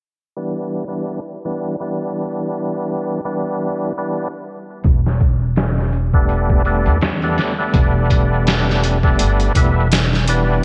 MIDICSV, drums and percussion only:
0, 0, Header, 1, 2, 480
1, 0, Start_track
1, 0, Tempo, 722892
1, 1303, Time_signature, 4, 2, 24, 8
1, 7068, End_track
2, 0, Start_track
2, 0, Title_t, "Drums"
2, 3212, Note_on_c, 9, 42, 77
2, 3216, Note_on_c, 9, 36, 101
2, 3278, Note_off_c, 9, 42, 0
2, 3283, Note_off_c, 9, 36, 0
2, 3363, Note_on_c, 9, 38, 40
2, 3429, Note_off_c, 9, 38, 0
2, 3455, Note_on_c, 9, 42, 61
2, 3457, Note_on_c, 9, 36, 83
2, 3521, Note_off_c, 9, 42, 0
2, 3524, Note_off_c, 9, 36, 0
2, 3694, Note_on_c, 9, 42, 77
2, 3701, Note_on_c, 9, 38, 102
2, 3760, Note_off_c, 9, 42, 0
2, 3767, Note_off_c, 9, 38, 0
2, 3838, Note_on_c, 9, 38, 38
2, 3905, Note_off_c, 9, 38, 0
2, 3935, Note_on_c, 9, 42, 68
2, 4001, Note_off_c, 9, 42, 0
2, 4074, Note_on_c, 9, 36, 83
2, 4140, Note_off_c, 9, 36, 0
2, 4176, Note_on_c, 9, 42, 73
2, 4242, Note_off_c, 9, 42, 0
2, 4314, Note_on_c, 9, 36, 80
2, 4380, Note_off_c, 9, 36, 0
2, 4416, Note_on_c, 9, 42, 58
2, 4482, Note_off_c, 9, 42, 0
2, 4554, Note_on_c, 9, 42, 36
2, 4621, Note_off_c, 9, 42, 0
2, 4657, Note_on_c, 9, 42, 74
2, 4665, Note_on_c, 9, 38, 102
2, 4724, Note_off_c, 9, 42, 0
2, 4731, Note_off_c, 9, 38, 0
2, 4795, Note_on_c, 9, 42, 36
2, 4861, Note_off_c, 9, 42, 0
2, 4899, Note_on_c, 9, 42, 62
2, 4907, Note_on_c, 9, 38, 48
2, 4966, Note_off_c, 9, 42, 0
2, 4973, Note_off_c, 9, 38, 0
2, 5137, Note_on_c, 9, 36, 102
2, 5137, Note_on_c, 9, 42, 83
2, 5204, Note_off_c, 9, 36, 0
2, 5204, Note_off_c, 9, 42, 0
2, 5379, Note_on_c, 9, 36, 85
2, 5381, Note_on_c, 9, 42, 62
2, 5445, Note_off_c, 9, 36, 0
2, 5448, Note_off_c, 9, 42, 0
2, 5624, Note_on_c, 9, 42, 79
2, 5631, Note_on_c, 9, 38, 104
2, 5690, Note_off_c, 9, 42, 0
2, 5697, Note_off_c, 9, 38, 0
2, 5773, Note_on_c, 9, 38, 40
2, 5839, Note_off_c, 9, 38, 0
2, 5866, Note_on_c, 9, 42, 65
2, 5933, Note_off_c, 9, 42, 0
2, 5998, Note_on_c, 9, 36, 90
2, 6065, Note_off_c, 9, 36, 0
2, 6102, Note_on_c, 9, 42, 80
2, 6169, Note_off_c, 9, 42, 0
2, 6240, Note_on_c, 9, 42, 41
2, 6306, Note_off_c, 9, 42, 0
2, 6341, Note_on_c, 9, 36, 92
2, 6343, Note_on_c, 9, 42, 59
2, 6407, Note_off_c, 9, 36, 0
2, 6409, Note_off_c, 9, 42, 0
2, 6584, Note_on_c, 9, 42, 79
2, 6592, Note_on_c, 9, 38, 104
2, 6651, Note_off_c, 9, 42, 0
2, 6658, Note_off_c, 9, 38, 0
2, 6728, Note_on_c, 9, 38, 37
2, 6795, Note_off_c, 9, 38, 0
2, 6823, Note_on_c, 9, 42, 63
2, 6889, Note_off_c, 9, 42, 0
2, 7068, End_track
0, 0, End_of_file